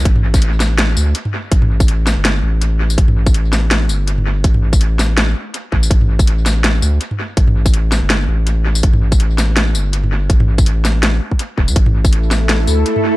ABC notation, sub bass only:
X:1
M:4/4
L:1/16
Q:"Swing 16ths" 1/4=164
K:Cmix
V:1 name="Sub bass" clef=bass
A,,,8- A,,,2 D,,2 z4 | A,,,6- A,,, G,,,3 A,,,6 | A,,,8- A,,,2 G,,,6 | A,,,8- A,,,2 z4 A,,,2 |
A,,,8- A,,,2 D,,2 z4 | A,,,6- A,,, G,,,3 A,,,6 | A,,,8- A,,,2 G,,,6 | A,,,8- A,,,2 z4 E,,, D,, |
A,,,8- A,,,2 D,,2 z4 |]